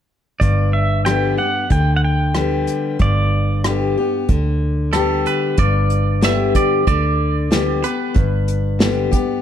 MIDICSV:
0, 0, Header, 1, 6, 480
1, 0, Start_track
1, 0, Tempo, 645856
1, 305, Time_signature, 4, 2, 24, 8
1, 6999, End_track
2, 0, Start_track
2, 0, Title_t, "Pedal steel guitar"
2, 0, Program_c, 0, 26
2, 296, Note_on_c, 0, 74, 75
2, 545, Note_on_c, 0, 76, 72
2, 548, Note_off_c, 0, 74, 0
2, 778, Note_off_c, 0, 76, 0
2, 781, Note_on_c, 0, 79, 80
2, 1025, Note_off_c, 0, 79, 0
2, 1028, Note_on_c, 0, 78, 72
2, 1274, Note_off_c, 0, 78, 0
2, 1277, Note_on_c, 0, 79, 76
2, 1457, Note_off_c, 0, 79, 0
2, 1460, Note_on_c, 0, 78, 64
2, 1510, Note_off_c, 0, 78, 0
2, 1520, Note_on_c, 0, 79, 76
2, 2242, Note_on_c, 0, 74, 66
2, 2255, Note_off_c, 0, 79, 0
2, 2685, Note_off_c, 0, 74, 0
2, 6999, End_track
3, 0, Start_track
3, 0, Title_t, "Clean electric guitar"
3, 0, Program_c, 1, 27
3, 3662, Note_on_c, 1, 69, 73
3, 3912, Note_off_c, 1, 69, 0
3, 3915, Note_on_c, 1, 71, 72
3, 4151, Note_off_c, 1, 71, 0
3, 4154, Note_on_c, 1, 74, 79
3, 4639, Note_off_c, 1, 74, 0
3, 4642, Note_on_c, 1, 76, 97
3, 4873, Note_off_c, 1, 76, 0
3, 4876, Note_on_c, 1, 74, 76
3, 5094, Note_off_c, 1, 74, 0
3, 5110, Note_on_c, 1, 74, 79
3, 5826, Note_on_c, 1, 71, 73
3, 5848, Note_off_c, 1, 74, 0
3, 6514, Note_off_c, 1, 71, 0
3, 6999, End_track
4, 0, Start_track
4, 0, Title_t, "Steel-string acoustic guitar"
4, 0, Program_c, 2, 25
4, 307, Note_on_c, 2, 43, 70
4, 786, Note_on_c, 2, 50, 49
4, 790, Note_on_c, 2, 55, 49
4, 794, Note_on_c, 2, 59, 57
4, 798, Note_on_c, 2, 67, 53
4, 1013, Note_off_c, 2, 67, 0
4, 1016, Note_off_c, 2, 50, 0
4, 1018, Note_off_c, 2, 55, 0
4, 1021, Note_off_c, 2, 59, 0
4, 1022, Note_on_c, 2, 67, 48
4, 1034, Note_on_c, 2, 59, 42
4, 1220, Note_off_c, 2, 43, 0
4, 1255, Note_off_c, 2, 67, 0
4, 1261, Note_off_c, 2, 59, 0
4, 1264, Note_on_c, 2, 50, 67
4, 1735, Note_off_c, 2, 50, 0
4, 1744, Note_on_c, 2, 50, 58
4, 1749, Note_on_c, 2, 55, 47
4, 1754, Note_on_c, 2, 59, 60
4, 1758, Note_on_c, 2, 67, 59
4, 2202, Note_off_c, 2, 50, 0
4, 2205, Note_off_c, 2, 55, 0
4, 2207, Note_off_c, 2, 59, 0
4, 2209, Note_off_c, 2, 67, 0
4, 2224, Note_on_c, 2, 43, 74
4, 2709, Note_on_c, 2, 50, 45
4, 2714, Note_on_c, 2, 55, 52
4, 2720, Note_on_c, 2, 59, 49
4, 2724, Note_on_c, 2, 67, 60
4, 2939, Note_off_c, 2, 50, 0
4, 2941, Note_off_c, 2, 55, 0
4, 2944, Note_off_c, 2, 59, 0
4, 2946, Note_off_c, 2, 67, 0
4, 2954, Note_on_c, 2, 67, 50
4, 2964, Note_on_c, 2, 59, 36
4, 3138, Note_off_c, 2, 43, 0
4, 3181, Note_off_c, 2, 67, 0
4, 3186, Note_off_c, 2, 59, 0
4, 3189, Note_on_c, 2, 50, 67
4, 3651, Note_off_c, 2, 50, 0
4, 3660, Note_on_c, 2, 50, 56
4, 3667, Note_on_c, 2, 55, 51
4, 3670, Note_on_c, 2, 59, 53
4, 3676, Note_on_c, 2, 67, 64
4, 4119, Note_off_c, 2, 50, 0
4, 4123, Note_off_c, 2, 55, 0
4, 4124, Note_off_c, 2, 59, 0
4, 4127, Note_off_c, 2, 67, 0
4, 4144, Note_on_c, 2, 43, 80
4, 4618, Note_on_c, 2, 50, 52
4, 4624, Note_on_c, 2, 55, 56
4, 4629, Note_on_c, 2, 59, 51
4, 4631, Note_on_c, 2, 67, 54
4, 5056, Note_off_c, 2, 43, 0
4, 5077, Note_off_c, 2, 50, 0
4, 5080, Note_off_c, 2, 55, 0
4, 5083, Note_off_c, 2, 59, 0
4, 5084, Note_off_c, 2, 67, 0
4, 5105, Note_on_c, 2, 50, 74
4, 5569, Note_off_c, 2, 50, 0
4, 5577, Note_on_c, 2, 50, 53
4, 5580, Note_on_c, 2, 55, 63
4, 5585, Note_on_c, 2, 59, 55
4, 5589, Note_on_c, 2, 67, 61
4, 5807, Note_off_c, 2, 67, 0
4, 5811, Note_off_c, 2, 50, 0
4, 5812, Note_off_c, 2, 55, 0
4, 5815, Note_off_c, 2, 59, 0
4, 5816, Note_on_c, 2, 67, 54
4, 5827, Note_on_c, 2, 59, 39
4, 6050, Note_off_c, 2, 67, 0
4, 6053, Note_on_c, 2, 43, 80
4, 6056, Note_off_c, 2, 59, 0
4, 6533, Note_on_c, 2, 50, 54
4, 6540, Note_on_c, 2, 55, 52
4, 6545, Note_on_c, 2, 59, 52
4, 6548, Note_on_c, 2, 67, 56
4, 6764, Note_off_c, 2, 67, 0
4, 6767, Note_off_c, 2, 50, 0
4, 6771, Note_off_c, 2, 55, 0
4, 6773, Note_on_c, 2, 67, 56
4, 6774, Note_off_c, 2, 59, 0
4, 6785, Note_on_c, 2, 59, 44
4, 6968, Note_off_c, 2, 43, 0
4, 6999, Note_off_c, 2, 59, 0
4, 6999, Note_off_c, 2, 67, 0
4, 6999, End_track
5, 0, Start_track
5, 0, Title_t, "Fingered electric bass"
5, 0, Program_c, 3, 33
5, 307, Note_on_c, 3, 31, 69
5, 1016, Note_off_c, 3, 31, 0
5, 1270, Note_on_c, 3, 38, 67
5, 1978, Note_off_c, 3, 38, 0
5, 2231, Note_on_c, 3, 31, 72
5, 2939, Note_off_c, 3, 31, 0
5, 3191, Note_on_c, 3, 38, 70
5, 3898, Note_off_c, 3, 38, 0
5, 4151, Note_on_c, 3, 31, 83
5, 4857, Note_off_c, 3, 31, 0
5, 5107, Note_on_c, 3, 38, 74
5, 5814, Note_off_c, 3, 38, 0
5, 6066, Note_on_c, 3, 31, 74
5, 6772, Note_off_c, 3, 31, 0
5, 6999, End_track
6, 0, Start_track
6, 0, Title_t, "Drums"
6, 306, Note_on_c, 9, 36, 87
6, 307, Note_on_c, 9, 42, 49
6, 381, Note_off_c, 9, 36, 0
6, 382, Note_off_c, 9, 42, 0
6, 789, Note_on_c, 9, 37, 90
6, 789, Note_on_c, 9, 42, 50
6, 864, Note_off_c, 9, 37, 0
6, 864, Note_off_c, 9, 42, 0
6, 1267, Note_on_c, 9, 42, 55
6, 1268, Note_on_c, 9, 36, 87
6, 1341, Note_off_c, 9, 42, 0
6, 1342, Note_off_c, 9, 36, 0
6, 1743, Note_on_c, 9, 37, 80
6, 1743, Note_on_c, 9, 42, 53
6, 1817, Note_off_c, 9, 37, 0
6, 1817, Note_off_c, 9, 42, 0
6, 1986, Note_on_c, 9, 42, 54
6, 2060, Note_off_c, 9, 42, 0
6, 2226, Note_on_c, 9, 42, 50
6, 2228, Note_on_c, 9, 36, 83
6, 2300, Note_off_c, 9, 42, 0
6, 2303, Note_off_c, 9, 36, 0
6, 2708, Note_on_c, 9, 37, 102
6, 2708, Note_on_c, 9, 42, 57
6, 2783, Note_off_c, 9, 37, 0
6, 2783, Note_off_c, 9, 42, 0
6, 3186, Note_on_c, 9, 42, 54
6, 3188, Note_on_c, 9, 36, 94
6, 3260, Note_off_c, 9, 42, 0
6, 3263, Note_off_c, 9, 36, 0
6, 3665, Note_on_c, 9, 37, 89
6, 3665, Note_on_c, 9, 42, 48
6, 3739, Note_off_c, 9, 37, 0
6, 3739, Note_off_c, 9, 42, 0
6, 3910, Note_on_c, 9, 42, 55
6, 3984, Note_off_c, 9, 42, 0
6, 4143, Note_on_c, 9, 42, 57
6, 4147, Note_on_c, 9, 36, 92
6, 4217, Note_off_c, 9, 42, 0
6, 4222, Note_off_c, 9, 36, 0
6, 4385, Note_on_c, 9, 42, 61
6, 4459, Note_off_c, 9, 42, 0
6, 4626, Note_on_c, 9, 38, 100
6, 4626, Note_on_c, 9, 42, 60
6, 4700, Note_off_c, 9, 38, 0
6, 4700, Note_off_c, 9, 42, 0
6, 4867, Note_on_c, 9, 42, 65
6, 4868, Note_on_c, 9, 36, 80
6, 4941, Note_off_c, 9, 42, 0
6, 4942, Note_off_c, 9, 36, 0
6, 5108, Note_on_c, 9, 36, 103
6, 5109, Note_on_c, 9, 42, 60
6, 5182, Note_off_c, 9, 36, 0
6, 5184, Note_off_c, 9, 42, 0
6, 5587, Note_on_c, 9, 38, 99
6, 5587, Note_on_c, 9, 42, 59
6, 5661, Note_off_c, 9, 38, 0
6, 5661, Note_off_c, 9, 42, 0
6, 5824, Note_on_c, 9, 42, 55
6, 5898, Note_off_c, 9, 42, 0
6, 6062, Note_on_c, 9, 42, 54
6, 6064, Note_on_c, 9, 36, 99
6, 6137, Note_off_c, 9, 42, 0
6, 6138, Note_off_c, 9, 36, 0
6, 6302, Note_on_c, 9, 42, 57
6, 6376, Note_off_c, 9, 42, 0
6, 6543, Note_on_c, 9, 38, 98
6, 6543, Note_on_c, 9, 42, 54
6, 6617, Note_off_c, 9, 38, 0
6, 6617, Note_off_c, 9, 42, 0
6, 6782, Note_on_c, 9, 42, 53
6, 6783, Note_on_c, 9, 36, 77
6, 6856, Note_off_c, 9, 42, 0
6, 6858, Note_off_c, 9, 36, 0
6, 6999, End_track
0, 0, End_of_file